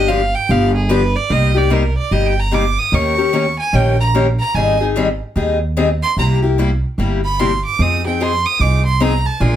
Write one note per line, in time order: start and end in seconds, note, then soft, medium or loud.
0.00 0.33 G1 medium
0.00 0.10 D#5 medium
0.08 0.20 D3 medium
0.08 0.20 F3 medium
0.08 0.20 A#3 loud
0.08 0.20 D4 medium
0.08 0.20 G4 loud
0.08 0.36 F5 medium
0.35 0.52 G5 loud
0.49 1.14 G1 medium
0.49 0.71 D3 medium
0.49 0.71 F3 medium
0.49 0.71 B3 medium
0.49 0.71 D4 medium
0.49 0.71 G4 medium
0.49 0.75 F5 medium
0.75 0.91 G#4 medium
0.89 1.01 D3 medium
0.89 1.01 F3 loud
0.89 1.01 B3 loud
0.89 1.01 D4 loud
0.89 1.01 G4 loud
0.89 1.17 B4 medium
1.16 1.34 D5 medium
1.29 1.95 C2 medium
1.29 1.51 C3 medium
1.29 1.51 G3 medium
1.29 1.52 A#3 medium
1.29 1.52 D#4 medium
1.29 1.52 G4 medium
1.29 1.58 D#5 medium
1.54 1.70 A#3 soft
1.54 1.70 D#4 soft
1.54 1.70 G4 medium
1.54 1.74 D5 medium
1.70 1.82 C3 medium
1.70 1.82 G3 medium
1.70 1.82 A#3 medium
1.70 1.82 D#4 medium
1.70 1.82 G4 medium
1.70 1.97 A#4 medium
1.98 2.14 D5 medium
2.11 2.76 G1 medium
2.11 2.33 C3 medium
2.11 2.33 G3 medium
2.11 2.33 A#3 medium
2.11 2.33 D#4 medium
2.11 2.33 G4 medium
2.11 2.28 D#5 medium
2.26 2.41 G5 medium
2.40 2.55 A#5 medium
2.51 2.63 C3 medium
2.51 2.63 G3 medium
2.51 2.64 A#3 medium
2.51 2.64 D#4 medium
2.51 2.64 G4 medium
2.51 2.80 D6 medium
2.79 2.95 D#6 loud
2.92 3.57 D#2 medium
2.92 3.14 D#3 medium
2.92 3.14 A#3 medium
2.92 3.14 C#4 medium
2.92 3.14 G4 medium
2.92 3.15 A#4 medium
2.92 3.59 C#6 medium
3.17 3.33 C#4 soft
3.17 3.32 G4 medium
3.17 3.32 A#4 medium
3.33 3.44 D#3 medium
3.33 3.44 A#3 medium
3.33 3.45 C#4 medium
3.33 3.45 G4 medium
3.33 3.45 A#4 medium
3.59 3.77 G#5 medium
3.73 4.38 A#1 medium
3.73 3.95 D#3 medium
3.73 3.95 A#3 medium
3.73 3.95 C#4 medium
3.73 3.95 G4 medium
3.73 3.95 A#4 medium
3.73 4.00 G5 medium
4.00 4.09 A#5 loud
4.14 4.26 D#3 medium
4.14 4.26 A#3 medium
4.14 4.26 C#4 medium
4.14 4.26 G4 loud
4.14 4.26 A#4 medium
4.40 4.56 A#5 loud
4.54 5.19 G#1 medium
4.54 4.76 D#3 medium
4.54 4.77 G3 medium
4.54 4.77 C4 medium
4.54 4.77 D#4 medium
4.54 4.77 G#4 medium
4.54 4.80 G#5 medium
4.81 4.96 C4 soft
4.81 4.96 D#4 medium
4.81 4.95 G#4 medium
4.96 5.07 D#3 medium
4.96 5.07 G3 medium
4.96 5.08 C4 medium
4.96 5.08 D#4 loud
4.96 5.08 G#4 medium
5.36 6.01 D#2 medium
5.36 5.57 D#3 medium
5.36 5.57 G3 medium
5.36 5.58 C4 medium
5.36 5.58 D#4 medium
5.36 5.58 G#4 medium
5.77 5.88 D#3 medium
5.77 5.88 G3 medium
5.77 5.88 C4 medium
5.77 5.88 D#4 medium
5.77 5.88 G#4 loud
6.03 6.17 C6 loud
6.16 6.82 C2 medium
6.16 6.39 C3 medium
6.16 6.39 G3 medium
6.16 6.39 A#3 medium
6.16 6.39 E4 medium
6.16 6.40 G4 medium
6.16 6.33 A#5 medium
6.42 6.58 A#3 soft
6.42 6.58 E4 medium
6.42 6.57 G4 medium
6.58 6.69 C3 medium
6.58 6.69 G3 medium
6.58 6.70 A#3 medium
6.58 6.70 E4 loud
6.58 6.70 G4 medium
6.98 7.63 G1 medium
6.98 7.20 C3 medium
6.98 7.20 G3 medium
6.98 7.20 A#3 medium
6.98 7.20 E4 medium
6.98 7.20 G4 medium
7.25 7.41 B5 loud
7.39 7.50 C3 medium
7.39 7.50 G3 medium
7.39 7.51 A#3 medium
7.39 7.50 E4 medium
7.39 7.51 G4 medium
7.39 7.64 C6 medium
7.65 7.83 D6 loud
7.79 8.44 F2 medium
7.79 8.01 F3 medium
7.79 8.01 C4 medium
7.79 8.01 D#4 medium
7.79 8.01 G#4 medium
7.79 8.06 D#6 loud
8.05 8.19 C4 medium
8.05 8.20 D#4 soft
8.05 8.19 G#4 medium
8.05 8.24 G5 medium
8.20 8.31 F3 medium
8.20 8.31 C4 medium
8.20 8.31 D#4 medium
8.20 8.32 G#4 medium
8.20 8.47 C6 loud
8.46 8.62 D#6 loud
8.59 9.24 C2 medium
8.59 8.81 F3 medium
8.59 8.82 C4 medium
8.59 8.82 D#4 medium
8.59 8.82 G#4 medium
8.59 8.85 D6 loud
8.86 9.03 C6 loud
9.00 9.11 F3 medium
9.00 9.12 C4 loud
9.00 9.12 D#4 medium
9.00 9.12 G#4 loud
9.00 9.27 A#5 loud
9.26 9.42 A5 medium
9.40 9.56 A#1 medium
9.40 9.56 F3 medium
9.40 9.56 G#3 medium
9.40 9.56 D4 medium
9.40 9.56 F4 medium
9.40 9.56 A#4 medium
9.40 9.56 G#5 medium